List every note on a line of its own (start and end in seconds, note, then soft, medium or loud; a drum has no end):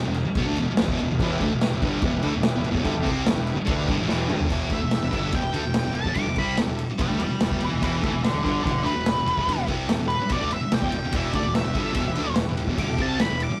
0.04 0.25 E1 medium
0.04 0.21 E2 medium
0.04 0.22 B2 medium
0.14 crash medium
0.25 muted distorted electric guitar stroke medium
0.30 muted fingered electric bass stroke soft
0.35 0.46 B1 loud
0.35 0.46 B2 medium
0.35 0.47 F#3 loud
0.35 kick loud
0.35 crash medium
0.47 0.57 D2 loud
0.47 0.56 D3 loud
0.47 0.57 A3 medium
0.56 0.68 E1 medium
0.56 0.68 E2 medium
0.56 0.69 B2 medium
0.56 crash medium
0.71 muted distorted electric guitar stroke medium
0.71 muted fingered electric bass stroke soft
0.77 0.89 E2 medium
0.77 0.89 B2 medium
0.77 snare loud
0.77 crash loud
0.82 0.87 E1 medium
0.87 0.97 E1 medium
0.87 0.99 E2 medium
0.87 kick loud
0.92 1.00 B2 loud
0.99 1.10 E1 medium
0.99 1.10 E2 medium
0.99 1.10 B2 medium
0.99 crash medium
1.11 1.19 E1 medium
1.11 1.20 E2 medium
1.11 1.21 B2 medium
1.17 1.39 E1 loud
1.17 1.46 E4 loud
1.17 1.47 G4 loud
1.17 1.46 B4 loud
1.17 kick loud
1.17 crash medium
1.22 1.41 E2 loud
1.22 1.41 B2 loud
1.22 1.41 E3 loud
1.40 1.49 D2 loud
1.40 1.51 D3 medium
1.40 1.51 A3 loud
1.40 kick medium
1.40 crash medium
1.52 1.71 E1 medium
1.52 1.68 E2 medium
1.52 1.68 B2 medium
1.61 1.88 E4 medium
1.61 1.88 G4 medium
1.61 1.88 B4 medium
1.61 snare loud
1.61 crash medium
1.73 1.81 E1 medium
1.73 1.82 E2 medium
1.73 1.83 B2 medium
1.81 2.01 G1 loud
1.81 2.02 G2 medium
1.81 2.02 D3 loud
1.81 2.03 G3 loud
1.81 kick loud
1.81 crash medium
2.02 2.12 E1 loud
2.02 2.12 E2 medium
2.02 2.13 B2 loud
2.02 2.30 E4 medium
2.02 2.29 G4 medium
2.02 2.30 B4 medium
2.02 kick loud
2.02 crash medium
2.14 2.23 E1 loud
2.14 2.23 E2 medium
2.14 2.22 B2 medium
2.22 2.33 D2 loud
2.22 2.32 D3 loud
2.22 2.33 A3 loud
2.22 crash medium
2.35 2.54 E1 medium
2.35 2.51 E2 medium
2.35 2.51 B2 medium
2.41 2.70 E4 medium
2.41 2.70 G4 medium
2.41 2.71 B4 medium
2.41 snare loud
2.41 crash medium
2.56 2.65 E1 medium
2.56 2.63 E2 medium
2.56 2.63 B2 medium
2.64 2.71 E2 medium
2.64 2.72 B2 medium
2.64 crash medium
2.69 2.74 E1 medium
2.69 2.83 E2 medium
2.73 2.84 E1 loud
2.73 2.84 B2 loud
2.73 kick loud
2.83 2.95 G1 loud
2.83 2.94 G2 loud
2.83 2.95 D3 loud
2.83 3.11 E4 loud
2.83 3.11 G4 medium
2.83 3.12 A4 loud
2.83 kick loud
2.83 crash medium
2.96 3.06 E1 medium
2.96 3.06 E2 medium
2.96 3.03 B2 medium
3.03 3.25 C2 medium
3.03 3.25 C3 medium
3.03 3.25 G3 loud
3.03 3.26 C4 loud
3.03 kick loud
3.03 crash medium
3.26 3.37 E1 medium
3.26 3.35 E2 medium
3.26 3.35 B2 medium
3.26 3.55 E4 medium
3.26 snare loud
3.26 crash medium
3.30 3.56 G4 medium
3.30 3.56 B4 medium
3.37 3.57 E1 medium
3.37 3.53 E2 medium
3.37 3.53 B2 medium
3.47 crash medium
3.56 muted distorted electric guitar stroke medium
3.61 muted fingered electric bass stroke soft
3.65 3.87 D2 medium
3.65 3.87 D3 medium
3.65 3.87 A3 medium
3.65 3.88 D4 loud
3.65 3.96 E4 medium
3.65 3.96 B4 medium
3.65 kick loud
3.65 crash medium
3.70 3.96 G4 medium
3.88 3.98 G1 medium
3.88 3.98 G2 loud
3.88 3.98 D3 loud
3.88 kick loud
3.88 crash medium
3.98 4.08 A1 loud
3.98 4.07 A2 medium
3.98 4.08 E3 medium
4.06 4.28 E1 loud
4.06 4.27 E2 medium
4.06 4.28 B2 medium
4.06 4.29 E3 loud
4.06 4.37 E4 medium
4.06 snare medium
4.11 4.37 G4 medium
4.11 4.37 B4 medium
4.27 4.49 G1 medium
4.27 4.49 G2 medium
4.27 4.50 D3 medium
4.27 4.50 G3 loud
4.27 mid tom loud
4.40 floor tom medium
4.50 4.70 E1 loud
4.50 4.70 E2 medium
4.50 4.71 B2 loud
4.50 4.71 E3 loud
4.50 4.78 E4 medium
4.50 4.78 G4 medium
4.50 4.78 B4 medium
4.50 kick loud
4.50 crash loud
4.70 4.81 D2 medium
4.70 4.81 D3 medium
4.70 4.81 A3 loud
4.70 5.33 E5 medium
4.70 kick medium
4.70 ride medium
4.82 5.01 E1 medium
4.82 4.98 E2 medium
4.82 4.98 B2 medium
4.91 5.20 E4 medium
4.91 5.20 G4 medium
4.91 5.20 B4 medium
4.91 snare loud
4.91 ride loud
5.02 5.12 E1 medium
5.02 5.10 E2 medium
5.02 5.12 B2 medium
5.11 5.32 G1 loud
5.11 5.32 G2 medium
5.11 5.33 D3 loud
5.11 5.33 G3 loud
5.11 kick loud
5.11 ride medium
5.32 5.41 E1 loud
5.32 5.42 E2 medium
5.32 5.43 B2 loud
5.32 5.61 E4 medium
5.32 5.61 G4 medium
5.32 5.62 B4 medium
5.32 5.95 G5 medium
5.32 kick loud
5.32 ride medium
5.42 5.52 E1 medium
5.42 5.54 E2 medium
5.42 5.52 B2 medium
5.52 5.64 D2 medium
5.52 5.63 D3 loud
5.52 5.64 A3 medium
5.52 ride medium
5.63 5.84 E1 medium
5.63 5.80 E2 medium
5.63 5.81 B2 medium
5.74 6.02 E4 medium
5.74 6.03 G4 medium
5.74 6.02 B4 medium
5.74 snare loud
5.74 ride loud
5.84 5.93 E1 medium
5.84 5.91 E2 medium
5.84 5.91 B2 medium
5.92 6.04 E1 medium
5.92 6.03 E2 medium
5.92 6.04 B2 medium
5.92 6.16 A5 loud
5.92 ride medium
6.04 6.15 E1 loud
6.04 6.15 E2 medium
6.04 6.16 B2 medium
6.04 kick loud
6.14 6.23 G1 medium
6.14 6.26 G2 loud
6.14 6.27 D3 loud
6.14 6.44 E4 medium
6.14 6.45 G4 medium
6.14 6.45 B4 medium
6.14 6.36 D6 loud
6.14 kick loud
6.14 ride medium
6.24 6.35 E1 medium
6.28 6.38 E2 medium
6.28 6.38 B2 medium
6.36 6.55 C2 loud
6.36 6.58 C3 medium
6.36 6.58 G3 medium
6.36 6.58 C4 medium
6.36 6.58 B5 loud
6.36 kick medium
6.36 ride medium
6.56 6.66 E1 medium
6.56 6.68 E2 medium
6.56 6.68 B2 medium
6.56 6.85 E4 medium
6.56 6.85 G4 medium
6.56 6.85 A4 medium
6.56 snare loud
6.56 ride medium
6.66 6.87 E1 medium
6.66 6.85 E2 medium
6.66 6.85 B2 medium
6.79 ride medium
6.88 muted fingered electric bass stroke soft
6.88 muted distorted electric guitar stroke medium
6.98 7.07 B1 medium
6.98 7.07 B2 medium
6.98 7.09 F#3 loud
6.98 7.26 E4 medium
6.98 7.26 G4 medium
6.98 7.26 B4 medium
6.98 7.21 D5 medium
6.98 7.21 G5 medium
6.98 kick loud
6.98 ride loud
7.07 7.18 D2 loud
7.07 7.18 D3 medium
7.07 7.19 A3 medium
7.19 7.28 E1 medium
7.19 7.30 E2 medium
7.19 7.30 B2 medium
7.19 7.41 D5 medium
7.19 ride medium
7.24 7.42 G5 medium
7.29 muted fingered electric bass stroke soft
7.29 muted distorted electric guitar stroke medium
7.40 7.50 E1 medium
7.40 7.49 E2 medium
7.40 7.50 B2 medium
7.40 7.68 E4 medium
7.40 7.68 G4 medium
7.40 7.68 B4 medium
7.40 7.61 D5 medium
7.40 7.62 G5 medium
7.40 snare loud
7.40 ride loud
7.50 7.61 E1 medium
7.50 7.59 E2 medium
7.50 7.60 B2 medium
7.50 kick loud
7.60 7.72 E1 medium
7.60 7.68 E2 medium
7.60 7.69 B2 medium
7.60 ride medium
7.65 7.83 B4 medium
7.65 7.83 E5 medium
7.69 7.81 E1 medium
7.69 7.79 E2 medium
7.69 7.80 B2 medium
7.80 8.01 E1 medium
7.80 8.01 E2 loud
7.80 7.99 B2 loud
7.80 8.02 E3 loud
7.80 8.09 E4 medium
7.80 8.09 G4 medium
7.80 8.10 B4 medium
7.80 8.02 B4 medium
7.80 kick loud
7.80 ride loud
7.85 8.04 E5 medium
8.00 8.12 D2 loud
8.00 8.11 D3 medium
8.00 8.12 A3 medium
8.00 kick loud
8.00 ride medium
8.06 8.24 B4 medium
8.06 8.25 E5 medium
8.13 8.32 E1 medium
8.13 8.30 E2 medium
8.13 8.30 B2 medium
8.24 8.51 E4 medium
8.24 8.51 G4 medium
8.24 8.43 A4 medium
8.24 8.52 A4 medium
8.24 8.43 D5 medium
8.24 snare loud
8.24 ride medium
8.33 8.44 E1 medium
8.33 8.43 E2 medium
8.33 8.44 B2 medium
8.43 8.64 G1 loud
8.43 8.64 G2 loud
8.43 8.64 D3 loud
8.43 8.65 G3 medium
8.43 8.62 A4 medium
8.43 8.64 D5 medium
8.43 kick loud
8.43 ride medium
8.64 8.74 E1 medium
8.64 8.71 E2 loud
8.64 8.72 B2 loud
8.64 8.92 E4 medium
8.64 8.92 G4 medium
8.64 8.84 A4 medium
8.64 8.92 B4 medium
8.64 8.85 D5 loud
8.64 kick loud
8.64 ride medium
8.72 8.83 E1 medium
8.72 8.84 E2 medium
8.72 8.83 B2 medium
8.84 8.94 D2 medium
8.84 8.95 D3 medium
8.84 8.95 A3 loud
8.84 9.65 B4 loud
8.84 ride medium
8.95 9.15 E1 medium
8.95 9.13 E2 medium
8.95 9.13 B2 medium
9.06 9.33 E4 medium
9.06 9.33 G4 medium
9.06 9.34 B4 medium
9.06 snare loud
9.06 ride loud
9.16 9.25 E1 medium
9.16 9.25 E2 medium
9.16 9.25 B2 medium
9.25 9.36 E1 medium
9.25 9.36 E2 medium
9.25 9.37 B2 medium
9.25 ride medium
9.37 9.47 E1 medium
9.37 9.47 E2 medium
9.37 9.47 B2 loud
9.37 kick medium
9.44 9.57 G1 medium
9.44 9.57 G2 loud
9.44 9.73 E4 medium
9.44 9.74 G4 medium
9.44 9.74 B4 medium
9.44 kick medium
9.49 9.58 D3 loud
9.49 ride medium
9.58 9.67 E1 medium
9.58 9.69 E2 soft
9.58 9.66 B2 medium
9.67 9.87 C2 loud
9.67 9.88 C3 medium
9.67 9.89 G3 medium
9.67 9.89 C4 loud
9.67 kick loud
9.67 ride medium
9.88 9.98 E1 medium
9.88 9.97 E2 medium
9.88 9.98 B2 medium
9.88 10.16 E4 medium
9.88 10.16 G4 medium
9.88 10.16 A4 medium
9.88 snare loud
9.88 ride loud
9.98 10.18 E1 medium
9.98 10.15 E2 medium
9.98 10.16 B2 medium
10.08 10.29 B4 medium
10.08 ride medium
10.20 muted distorted electric guitar stroke medium
10.20 muted fingered electric bass stroke soft
10.27 10.40 B1 medium
10.27 10.38 B2 loud
10.27 10.40 F#3 medium
10.27 10.56 E4 medium
10.27 10.57 G4 medium
10.27 10.57 B4 medium
10.27 kick loud
10.27 ride medium
10.32 10.52 D5 medium
10.39 10.50 D2 loud
10.39 10.49 D3 medium
10.39 10.51 A3 medium
10.49 10.61 E1 medium
10.49 10.60 E2 medium
10.49 10.61 B2 medium
10.49 ride medium
10.54 10.72 E5 loud
10.61 muted distorted electric guitar stroke medium
10.61 muted fingered electric bass stroke soft
10.71 10.82 E1 medium
10.71 10.80 E2 medium
10.71 10.82 B2 medium
10.71 10.99 E4 medium
10.71 10.99 G4 medium
10.71 11.00 D5 medium
10.71 11.13 G5 loud
10.71 snare loud
10.71 ride loud
10.81 10.92 E1 medium
10.81 10.91 E2 medium
10.81 10.92 B2 medium
10.81 kick loud
10.92 11.02 E1 medium
10.92 11.03 E2 medium
10.92 11.03 B2 medium
10.92 ride medium
11.04 11.13 E1 medium
11.04 11.11 E2 medium
11.04 11.12 B2 medium
11.12 11.32 E1 medium
11.12 11.33 E2 loud
11.12 11.33 B2 loud
11.12 11.34 E3 loud
11.12 11.40 E4 medium
11.12 11.40 G4 medium
11.12 11.40 D5 medium
11.12 kick loud
11.12 ride loud
11.16 11.35 E5 medium
11.33 11.44 D2 medium
11.33 11.43 D3 medium
11.33 11.44 A3 loud
11.33 11.55 D5 medium
11.33 kick loud
11.33 ride medium
11.43 11.63 E1 medium
11.43 11.60 E2 medium
11.43 11.60 B2 medium
11.53 11.81 E4 medium
11.53 11.82 G4 medium
11.53 11.82 B4 medium
11.53 12.35 E5 medium
11.53 snare loud
11.53 ride loud
11.65 11.74 E1 medium
11.65 11.73 E2 medium
11.65 11.74 B2 medium
11.74 11.94 G1 loud
11.74 11.93 G2 medium
11.74 11.94 D3 loud
11.74 11.95 G3 loud
11.74 kick loud
11.74 ride medium
11.93 12.05 E1 loud
11.93 12.04 E2 medium
11.93 12.05 B2 medium
11.93 12.24 E4 medium
11.93 kick loud
11.93 ride loud
11.99 12.25 G4 medium
11.99 12.25 B4 medium
12.06 12.16 E1 medium
12.06 12.17 E2 medium
12.06 12.16 B2 medium
12.15 12.27 D2 medium
12.15 12.26 D3 medium
12.15 12.27 A3 loud
12.15 ride medium
12.28 12.47 E1 medium
12.28 12.44 E2 medium
12.28 12.44 B2 medium
12.35 12.64 E4 medium
12.35 12.64 G4 medium
12.35 12.64 B4 medium
12.35 snare loud
12.35 ride loud
12.48 12.57 E1 medium
12.48 12.56 E2 medium
12.48 12.56 B2 medium
12.57 12.67 E1 medium
12.57 12.66 E2 medium
12.57 12.68 B2 medium
12.57 ride medium
12.67 12.77 E1 medium
12.67 12.77 E2 medium
12.67 12.78 B2 loud
12.67 kick medium
12.75 12.88 G1 medium
12.75 12.88 G2 loud
12.75 13.04 E4 medium
12.75 13.04 G4 medium
12.75 13.05 A4 medium
12.75 kick loud
12.75 ride loud
12.79 12.88 D3 loud
12.79 12.99 D6 loud
12.88 12.98 E1 medium
12.88 13.00 E2 medium
12.88 12.97 B2 medium
12.97 13.18 C2 loud
12.97 13.18 C3 medium
12.97 13.19 G3 medium
12.97 13.20 C4 medium
12.97 kick loud
12.97 ride medium
13.01 13.20 A5 loud
13.20 13.29 E1 medium
13.20 13.29 E2 medium
13.20 13.30 B2 medium
13.20 13.47 E4 medium
13.20 13.47 G4 medium
13.20 13.48 B4 medium
13.20 13.40 B5 loud
13.20 snare loud
13.20 ride medium
13.30 13.49 E1 medium
13.30 13.47 E2 medium
13.30 13.47 B2 medium
13.40 13.60 D6 medium
13.40 ride medium
13.50 muted distorted electric guitar stroke medium
13.50 muted fingered electric bass stroke soft